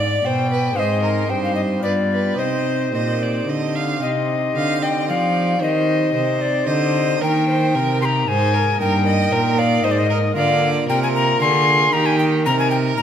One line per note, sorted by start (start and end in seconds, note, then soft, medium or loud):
0.00 0.20 G#2 medium
0.00 0.24 G#2 medium
0.00 0.26 D5 medium
0.00 0.27 D5 medium
0.00 0.72 D5 medium
0.24 0.76 B2 medium
0.24 0.73 B2 medium
0.24 0.50 C5 medium
0.24 0.77 G5 medium
0.51 0.75 B4 medium
0.71 1.25 G#3 medium
0.71 1.23 C4 medium
0.71 1.25 D#4 soft
0.75 1.28 G#2 medium
0.75 1.25 G#2 medium
0.75 1.27 C5 medium
0.75 1.02 C5 medium
0.75 1.31 D#5 medium
0.75 0.80 F5 medium
1.02 1.31 A#4 medium
1.25 1.79 C4 soft
1.25 1.80 D#4 medium
1.25 1.80 G4 medium
1.30 1.79 G2 medium
1.30 1.82 G2 medium
1.30 1.83 C5 medium
1.30 1.43 G5 medium
1.44 1.55 F5 medium
1.55 1.61 D#5 medium
1.78 2.34 B3 soft
1.78 2.35 F4 soft
1.78 2.34 G4 medium
1.82 2.34 G2 medium
1.82 2.37 G2 medium
1.82 1.92 B4 medium
1.82 2.37 D5 medium
2.12 2.40 B4 medium
2.33 3.96 C4 soft
2.33 3.97 D#4 soft
2.33 3.97 G4 soft
2.38 2.89 C3 medium
2.38 2.92 C3 medium
2.38 3.45 C5 medium
2.38 2.88 D#5 medium
2.93 3.44 A#2 soft
2.93 3.47 A#2 medium
2.93 3.24 D#5 medium
3.22 3.50 D5 medium
3.48 3.98 D3 soft
3.48 4.01 D3 medium
3.48 3.77 D#5 medium
3.75 4.02 F5 medium
3.98 5.55 C4 soft
3.98 5.56 D#4 soft
3.98 5.57 G4 soft
4.02 4.52 C3 soft
4.02 4.52 C3 medium
4.02 4.78 D#5 medium
4.56 5.05 D3 medium
4.56 5.11 D3 medium
4.56 4.84 F5 medium
4.82 5.11 D#5 medium
4.82 5.08 G5 medium
5.09 5.58 F3 medium
5.09 5.61 F3 medium
5.09 5.63 D5 medium
5.09 5.61 F5 medium
5.57 6.13 D#3 medium
5.57 7.16 C4 medium
5.57 7.17 D#4 soft
5.57 7.18 G4 soft
5.61 6.11 D#3 medium
5.61 6.14 C5 medium
5.61 6.43 D#5 medium
6.14 6.67 C3 medium
6.14 6.64 C3 medium
6.14 6.69 C5 medium
6.41 6.68 D5 medium
6.67 7.21 D3 medium
6.67 7.18 D3 medium
6.67 7.21 C5 medium
6.67 7.23 D#5 medium
7.17 7.71 A#3 medium
7.17 8.75 D#4 medium
7.17 8.75 A#4 medium
7.22 7.71 D#3 medium
7.22 7.77 D#3 medium
7.22 7.48 A#4 medium
7.22 8.01 G5 loud
7.49 7.76 C5 medium
7.75 8.24 C3 medium
7.75 8.28 C3 medium
7.75 8.03 A#4 medium
8.02 8.28 G4 medium
8.02 8.29 A#5 medium
8.02 8.06 C6 medium
8.28 8.76 G#2 medium
8.28 8.79 G#2 medium
8.28 8.55 C5 medium
8.28 8.80 G#5 loud
8.54 8.79 A#4 medium
8.76 9.79 A#3 medium
8.76 10.31 D#4 medium
8.76 10.32 A#4 medium
8.80 9.28 G2 medium
8.80 9.32 G2 medium
8.80 9.06 A#4 medium
8.80 9.60 G5 loud
9.06 9.34 D#5 medium
9.32 9.80 A#2 medium
9.32 9.84 A#2 medium
9.32 9.60 A#4 medium
9.59 9.86 D5 medium
9.59 9.85 F5 loud
9.84 10.36 G#2 medium
9.84 10.33 G#2 medium
9.84 10.09 C5 medium
9.84 9.93 D#5 loud
9.91 10.00 D5 medium
9.99 10.35 D#5 loud
10.10 10.18 A#4 medium
10.32 11.88 A#3 medium
10.32 11.88 F4 medium
10.32 11.89 A#4 medium
10.32 10.69 F5 loud
10.37 10.85 D3 medium
10.37 10.88 D5 medium
10.89 11.37 C3 medium
10.89 11.41 C3 medium
10.89 11.43 A#4 medium
10.89 11.01 G5 loud
11.03 11.09 G#5 medium
11.15 11.40 A#5 loud
11.41 11.90 D3 medium
11.41 11.93 D3 medium
11.41 11.94 G#4 medium
11.41 11.94 C6 loud
11.90 12.42 A#3 medium
11.90 13.02 D#4 medium
11.90 13.02 A#4 medium
11.90 12.07 A#5 loud
11.94 12.48 D#3 medium
11.94 12.42 D#3 medium
11.94 12.45 G4 medium
12.06 12.18 G#5 loud
12.19 12.25 G5 loud
12.46 12.95 C3 medium
12.46 12.98 C3 medium
12.46 13.02 A#4 medium
12.46 12.59 A#5 loud
12.59 12.70 G#5 medium
12.71 12.77 G5 loud
12.97 13.02 A#2 medium
12.97 13.02 A#5 loud